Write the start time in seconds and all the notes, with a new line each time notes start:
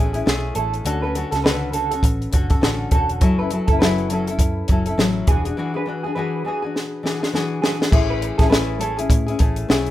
Already playing: A1 A3 C#4
0.00 E4 G#4
0.13 C#4 E4 G#4, closed hi-hat
0.26 B1 A3 C#4 E4 G#4, snare
0.55 A1 A3 C#4 E4 A4, closed hi-hat
0.59 G#4
0.74 closed hi-hat
0.85 D2 D3 C#4 F#4 A4, closed hi-hat
1.02 F#4 A4 B4
1.07 C#4
1.15 D3 C#4 F#4 A4, closed hi-hat
1.31 C#2 F#4 A4, snare, closed hi-hat
1.36 C#4
1.44 D3 C#4 F#4 A4 B4, snare
1.73 D3 C#4 F#4 A4, closed hi-hat
1.91 C#4 F#4 A4, closed hi-hat
2.03 A1, kick, closed hi-hat
2.22 closed hi-hat
2.31 F#1 D3 C#4 F#4 A4, kick, closed hi-hat
2.50 C#4 F#4 A4, kick, closed hi-hat
2.61 A1 D3 C#4 F#4 A4, snare
2.91 E1 D3 C#4 F#4 A4, kick, closed hi-hat
3.09 closed hi-hat
3.21 F#1 F#3 C#4 E4 A4, kick, closed hi-hat
3.39 C#4 E4 A4 B4
3.51 F#3 C#4 E4, closed hi-hat
3.55 A4
3.67 F#1 E4 A4, kick, closed hi-hat
3.73 C#4
3.79 F#3 C#4 E4 A4 B4, snare
3.98 closed hi-hat
4.09 F#3 C#4 E4 A4, closed hi-hat
4.13 A4
4.27 E4 A4, closed hi-hat
4.32 C#4
4.38 F#2, kick, closed hi-hat
4.68 F#1 F#3 C#4 E4, kick, closed hi-hat
4.72 A4
4.86 E4 A4, closed hi-hat
4.90 C#4
4.98 A1 F#3 C#4 E4 A4, snare
5.27 E1 E3 D4 F#4 G#4, kick, closed hi-hat
5.45 D4 F#4 G#4, closed hi-hat
5.57 E3 D4 F#4 G#4
5.74 D4 F#4 G#4 B4
5.86 E3 D4 F#4 G#4
6.03 F#4 G#4
6.08 D4
6.15 E3 D4 F#4 G#4 B4
6.44 E3 D4 F#4 G#4
6.62 F#4 G#4
6.66 D4
6.76 snare
7.03 E3 D4 F#4 G#4, snare
7.21 D4 F#4 G#4, snare
7.33 E3 D4 F#4 G#4, snare
7.62 E3 D4 F#4 G#4, snare
7.80 D4 F#4 G#4, snare
7.91 A1 A3 C#4 E4 G#4, kick, crash
8.10 B4
8.22 closed hi-hat
8.38 A1 E4 G#4 A4, kick, snare, closed hi-hat
8.42 C#4
8.50 A3 C#4 E4 G#4 B4, snare
8.79 A3 C#4 E4 G#4 A4, closed hi-hat
8.97 C#4 E4 G#4, closed hi-hat
9.10 A2, kick, closed hi-hat
9.26 C#4 E4 G#4, closed hi-hat
9.39 A1 A3 C#4 E4 G#4, kick, closed hi-hat
9.56 closed hi-hat
9.69 B1 A3 C#4 E4 G#4, snare
9.86 closed hi-hat